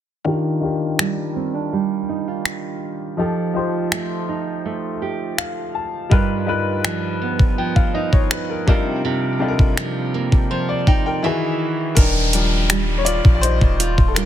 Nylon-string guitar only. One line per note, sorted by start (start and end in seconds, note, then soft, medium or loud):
0.26 3.22 D#3 medium
0.99 1.72 G3 medium
1.36 1.54 C4 medium
1.54 3.26 D4 medium
1.73 3.19 G3 medium
2.09 2.28 D#4 medium
2.28 3.26 F4 medium
3.19 6.15 F3 medium
3.92 4.64 A3 medium
4.29 6.88 D#4 medium
4.65 6.19 A3 medium
5.02 6.88 G4 medium
6.12 8.75 G2 medium
6.85 7.58 F3 medium
7.22 8.75 B3 medium
7.58 9.77 F3 medium
7.95 9.81 D#4 medium
8.68 9.04 C3 medium
9.05 11.31 C3 medium
9.78 10.50 F3 medium
10.14 11.31 A#3 medium
10.51 11.24 F3 medium
10.87 13.79 D#4 medium
11.24 12.04 E3 medium
11.97 14.25 D#3 medium
12.70 14.16 G3 medium
13.80 14.17 F4 medium
14.16 14.25 G3 medium
14.16 14.25 D4 medium
14.16 14.25 F4 medium